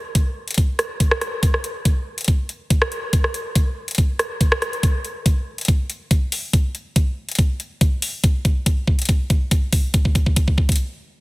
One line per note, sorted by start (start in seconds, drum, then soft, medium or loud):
0.15 kick loud
0.15 closed hi-hat medium
0.48 closed hi-hat soft
0.51 closed hi-hat medium
0.54 kick loud
0.54 closed hi-hat medium
0.58 closed hi-hat medium
0.79 cross-stick soft
0.79 closed hi-hat medium
1.00 kick loud
1.00 closed hi-hat medium
1.11 cross-stick medium
1.21 cross-stick medium
1.21 closed hi-hat medium
1.43 kick loud
1.43 closed hi-hat medium
1.54 cross-stick soft
1.64 closed hi-hat soft
1.85 kick loud
1.85 closed hi-hat medium
2.18 closed hi-hat soft
2.21 closed hi-hat medium
2.24 closed hi-hat medium
2.28 kick medium
2.28 closed hi-hat medium
2.49 closed hi-hat medium
2.70 kick loud
2.70 closed hi-hat medium
2.82 cross-stick medium
2.92 closed hi-hat soft
3.13 kick loud
3.13 closed hi-hat medium
3.24 cross-stick medium
3.34 closed hi-hat soft
3.55 kick loud
3.55 closed hi-hat medium
3.88 closed hi-hat soft
3.91 closed hi-hat medium
3.95 closed hi-hat medium
3.98 kick medium
3.98 closed hi-hat medium
4.19 cross-stick medium
4.19 closed hi-hat soft
4.41 kick loud
4.41 closed hi-hat medium
4.52 cross-stick medium
4.62 cross-stick medium
4.62 closed hi-hat soft
4.73 closed hi-hat soft
4.83 kick loud
4.83 closed hi-hat medium
5.05 closed hi-hat soft
5.26 kick loud
5.26 closed hi-hat medium
5.58 closed hi-hat soft
5.61 closed hi-hat medium
5.65 kick loud
5.65 closed hi-hat medium
5.68 closed hi-hat medium
5.90 closed hi-hat medium
6.11 kick loud
6.11 closed hi-hat medium
6.32 open hi-hat medium
6.53 kick loud
6.53 closed hi-hat medium
6.75 closed hi-hat medium
6.96 kick loud
6.96 closed hi-hat medium
7.29 closed hi-hat soft
7.31 closed hi-hat medium
7.35 kick loud
7.35 closed hi-hat medium
7.39 closed hi-hat medium
7.60 closed hi-hat medium
7.81 kick loud
7.81 closed hi-hat medium
8.02 open hi-hat loud
8.24 kick loud
8.24 closed hi-hat medium
8.45 kick loud
8.45 closed hi-hat medium
8.66 kick loud
8.66 closed hi-hat medium
8.87 kick loud
8.99 closed hi-hat medium
9.02 closed hi-hat medium
9.05 closed hi-hat medium
9.09 kick loud
9.09 closed hi-hat medium
9.30 kick loud
9.30 closed hi-hat medium
9.51 kick loud
9.51 closed hi-hat medium
9.73 kick loud
9.73 open hi-hat loud
9.94 kick loud
9.94 closed hi-hat medium
10.05 kick medium
10.15 kick loud
10.15 closed hi-hat medium
10.26 kick medium
10.36 kick loud
10.36 closed hi-hat medium
10.48 kick medium
10.58 kick loud
10.69 kick medium
10.69 closed hi-hat medium
10.72 closed hi-hat medium
10.76 closed hi-hat medium